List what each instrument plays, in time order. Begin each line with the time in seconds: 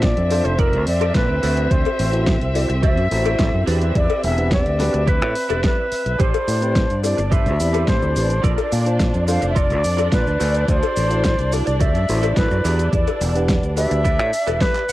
Already playing: fingered electric bass A#2, string section C4 E5, tine electric piano D4 F4 C5 A5
0.03 flute D5, kick, snare, closed hi-hat
0.17 fingered electric bass F2, closed hi-hat
0.30 tine electric piano D4 F4 A4 C5, muted clean electric guitar stroke, open hi-hat, cowbell
0.44 fingered electric bass F1, flute C5, muted clean electric guitar stroke, closed hi-hat
0.58 clean electric guitar F4 A4 A#4 D5, flute A#4, kick, closed hi-hat
0.73 fingered electric bass D2, closed hi-hat
0.87 fingered electric bass F2, flute D5, open hi-hat
1.01 clean electric guitar F4 A4 A#4 D5, closed hi-hat, cowbell
1.15 fingered electric bass A#2, flute B4, kick, snare, closed hi-hat
1.29 fingered electric bass D2
1.43 fingered electric bass D2, clean electric guitar F#4 A4 C5 D5, open hi-hat
1.57 closed hi-hat
1.71 fingered electric bass D2, flute C5, kick, closed hi-hat
1.85 closed hi-hat, cowbell
1.99 fingered electric bass A1, open hi-hat
2.12 tine electric piano E4 F#4 A4 C5, closed hi-hat
2.27 kick, snare, closed hi-hat
2.41 fingered electric bass C2, closed hi-hat
2.54 tine electric piano E4 F#4 A4 D5, flute D5, muted clean electric guitar stroke, open hi-hat, cowbell
2.69 fingered electric bass C2, muted clean electric guitar stroke, closed hi-hat
2.83 clean electric guitar F#4 A4 C5 D5, flute E5, kick, closed hi-hat
2.97 fingered electric bass F#2, closed hi-hat
3.11 fingered electric bass A1, tine electric piano E4 F#4 A4 C5, open hi-hat
3.24 clean electric guitar F#4 A4 C5 D5, closed hi-hat, cowbell
3.39 fingered electric bass A1, kick, snare, closed hi-hat
3.54 fingered electric bass F#2
3.66 fingered electric bass E2, tine electric piano D4 F#4 G4 B4, clean electric guitar E4 G4 B4 D5, open hi-hat
3.81 closed hi-hat
3.95 fingered electric bass E2, flute D5, kick, closed hi-hat
4.10 closed hi-hat, cowbell
4.23 fingered electric bass E1, flute E5, open hi-hat
4.38 tine electric piano D4 G4 B4 F#5, closed hi-hat
4.51 flute D5, kick, snare, closed hi-hat
4.66 fingered electric bass D2, closed hi-hat
4.79 tine electric piano D4 F#4 G4 B4, muted clean electric guitar stroke, snare, open hi-hat, cowbell
4.93 fingered electric bass D2, muted clean electric guitar stroke, closed hi-hat
5.07 clean electric guitar E4 G4 B4 E5, flute B4, kick, closed hi-hat
5.22 fingered electric bass A2, closed hi-hat
5.35 open hi-hat
5.49 fingered electric bass E1, clean electric guitar E4 G4 B4 D5, closed hi-hat, cowbell
5.64 flute B4, kick, snare, closed hi-hat
5.92 muted fingered electric bass stroke, open hi-hat
6.06 fingered electric bass B1, closed hi-hat
6.19 fingered electric bass A1, string section D4 D5, clean electric guitar G4 A4 B4 C5, flute C5, kick, closed hi-hat, shaker
6.34 closed hi-hat, cowbell, shaker
6.48 fingered electric bass A2, open hi-hat, shaker
6.62 tine electric piano C4 E4 G4 B4, closed hi-hat, shaker
6.76 kick, snare, closed hi-hat, shaker
6.90 fingered electric bass G2, closed hi-hat, shaker
7.03 tine electric piano C4 E4 G4 C5, flute D5, muted clean electric guitar stroke, open hi-hat, cowbell, shaker
7.18 fingered electric bass G1, muted clean electric guitar stroke, closed hi-hat, shaker
7.31 clean electric guitar G4 A4 B4 C5, flute E5, kick, closed hi-hat, shaker
7.46 fingered electric bass D2, closed hi-hat, shaker
7.60 fingered electric bass E2, tine electric piano C4 E4 G4 B5, open hi-hat, shaker
7.73 clean electric guitar G4 A4 B4 C5, closed hi-hat, cowbell, shaker
7.88 fingered electric bass A2, flute C5, kick, snare, closed hi-hat, shaker
8.02 fingered electric bass D2, shaker
8.16 fingered electric bass A1, tine electric piano C4 E4 G4 B4, open hi-hat, shaker
8.30 closed hi-hat, shaker
8.43 fingered electric bass A#1, clean electric guitar F4 A4 A#4 D5, flute D5, kick, closed hi-hat, shaker
8.58 closed hi-hat, cowbell, shaker
8.72 fingered electric bass A#2, open hi-hat, shaker
8.86 tine electric piano D4 F4 C5 A5, closed hi-hat, shaker
9.00 kick, snare, closed hi-hat, shaker
9.14 fingered electric bass F2, closed hi-hat, shaker
9.27 tine electric piano D4 F4 A4 C5, flute F5, muted clean electric guitar stroke, open hi-hat, cowbell, shaker
9.41 fingered electric bass F1, muted clean electric guitar stroke, closed hi-hat, shaker
9.50 flute E5
9.55 clean electric guitar F4 A4 A#4 D5, flute D5, kick, closed hi-hat, shaker
9.70 fingered electric bass D2, closed hi-hat, shaker
9.84 fingered electric bass F2, open hi-hat, shaker
9.97 clean electric guitar F4 A4 A#4 D5, closed hi-hat, cowbell, shaker
10.12 fingered electric bass A#2, flute B4, kick, snare, closed hi-hat, shaker
10.27 fingered electric bass D2, shaker
10.39 fingered electric bass D2, clean electric guitar F#4 A4 C5 D5, open hi-hat, shaker
10.55 closed hi-hat, shaker
10.68 fingered electric bass D2, flute C5, kick, closed hi-hat, shaker
10.83 closed hi-hat, cowbell, shaker
10.97 fingered electric bass A1, open hi-hat, shaker
11.10 tine electric piano E4 F#4 A4 C5, closed hi-hat, shaker
11.24 kick, snare, closed hi-hat, shaker
11.39 fingered electric bass C2, closed hi-hat, shaker
11.52 tine electric piano E4 F#4 A4 D5, flute D5, muted clean electric guitar stroke, open hi-hat, cowbell, shaker
11.66 fingered electric bass C2, muted clean electric guitar stroke, closed hi-hat, shaker
11.79 clean electric guitar F#4 A4 C5 D5, flute E5, kick, closed hi-hat, shaker
11.95 fingered electric bass F#2, closed hi-hat, shaker
12.09 fingered electric bass A1, tine electric piano E4 F#4 A4 C5, open hi-hat, shaker
12.22 clean electric guitar F#4 A4 C5 E5, closed hi-hat, cowbell, shaker
12.37 fingered electric bass A1, flute B4, kick, snare, closed hi-hat, shaker
12.51 fingered electric bass F#2, shaker
12.64 fingered electric bass E2, tine electric piano D4 F#4 G4 B4, clean electric guitar E4 G4 B4 D5, open hi-hat, shaker
12.79 closed hi-hat, shaker
12.93 fingered electric bass E2, flute D5, kick, closed hi-hat, shaker
13.07 closed hi-hat, cowbell, shaker
13.21 fingered electric bass E1, open hi-hat, shaker
13.35 tine electric piano D4 G4 B4 F#5, closed hi-hat, shaker
13.49 kick, snare, closed hi-hat, shaker
13.63 fingered electric bass D2, closed hi-hat, shaker
13.76 tine electric piano D4 F#4 G4 B4, flute E5, muted clean electric guitar stroke, open hi-hat, cowbell, shaker
13.90 fingered electric bass D2, muted clean electric guitar stroke, closed hi-hat, shaker
14.04 clean electric guitar E4 G4 B4 D5, kick, closed hi-hat, shaker
14.19 fingered electric bass A2, closed hi-hat, shaker
14.33 open hi-hat, shaker
14.47 fingered electric bass E1, clean electric guitar E4 G4 B4 D5, closed hi-hat, cowbell, shaker
14.61 flute B4, clean electric guitar E5, kick, snare, open hi-hat, shaker
14.75 clap, closed hi-hat, shaker
14.89 clean electric guitar F#5, muted fingered electric bass stroke, open hi-hat, shaker